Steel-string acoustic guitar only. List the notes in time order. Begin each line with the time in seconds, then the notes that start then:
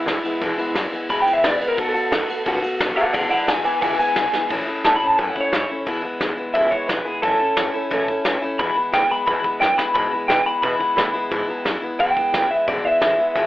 0.05 E3 G#3 B3 E4
0.23 E3 G#3 B3 E4
0.41 E2 B2 E3 G#3 B3 E4
0.58 E3 G#3 B3 E4
0.75 E3 G#3 B3 E4
0.92 E3 G#3 B3 E4
1.09 E2 B2 E3 G#3 B3 E4
1.26 E3 G#3 B3 E4
1.43 E3 G#3 B3 E4
1.60 E3 G#3 B3 E4
1.77 B2 D#3 A3 B3 F#4
1.94 A3 B3 F#4
2.11 D#3 A3 B3 F#4
2.28 A3 B3 F#4
2.45 B2 D#3 A3 B3 F#4
2.62 A3 B3 F#4
2.79 D#3 A3 B3 F#4
2.95 A3 B3 F#4
3.13 E2 B2 E3 G#3 B3 E4
3.30 E3 G#3 B3 E4
3.47 E3 G#3 B3 E4
3.64 E3 G#3 B3 E4
3.81 E2 B2 E3 G#3 B3 E4
3.98 E3 G#3 B3 E4
4.15 E3 G#3 B3 E4
4.32 E3 G#3 B3 E4
4.49 A2 E3 A3 C#4 E4
4.66 A3 C#4 E4
4.84 E3 A3 C#4 E4
5.01 A3 C#4 E4
5.18 A2 E3 A3 C#4 E4
5.35 A3 C#4 E4
5.52 E3 A3 C#4 E4
5.69 A3 C#4 E4
5.86 E2 B2 E3 G#3 B3 E4
6.03 E3 G#3 B3 E4
6.20 E3 G#3 B3 E4
6.37 E3 G#3 B3 E4
6.53 E2 B2 E3 G#3 B3 E4
6.71 E3 G#3 B3 E4
6.88 E3 G#3 B3 E4
7.05 E3 G#3 B3 E4
7.23 A2 E3 A3 C#4 E4
7.39 A3 C#4 E4
7.56 E3 A3 C#4 E4
7.74 A3 C#4 E4
7.90 A2 E3 A3 C#4 E4
8.08 A3 C#4 E4
8.24 E3 A3 C#4 E4
8.42 A3 C#4 E4
8.59 E2 B2 E3 G#3 B3 E4
8.75 E3 G#3 B3 E4
8.92 E3 G#3 B3 E4
9.09 E3 G#3 B3 E4
9.26 E2 B2 E3 G#3 B3 E4
9.43 E3 G#3 B3 E4
9.60 E3 G#3 B3 E4
9.77 E3 G#3 B3 E4
9.94 E2 B2 E3 G#3 B3 E4
10.11 E3 G#3 B3 E4
10.28 E3 G#3 B3 E4
10.45 E3 G#3 B3 E4
10.62 E2 B2 E3 G#3 B3 E4
10.79 E3 G#3 B3 E4
10.96 E3 G#3 B3 E4
11.13 E3 G#3 B3 E4
11.31 E2 B2 E3 G#3 B3 E4
11.48 E3 G#3 B3 E4
11.65 E3 G#3 B3 E4
11.82 E3 G#3 B3 E4
11.99 E2 B2 E3 G#3 B3 E4
12.16 E3 G#3 B3 E4
12.33 E3 G#3 B3 E4
12.50 E3 G#3 B3 E4
12.68 E2 B2 E3 G#3 B3 E4
12.84 E3 G#3 B3 E4
13.01 E3 G#3 B3 E4
13.18 E3 G#3 B3 E4
13.35 E2 B2 E3 G#3 B3 E4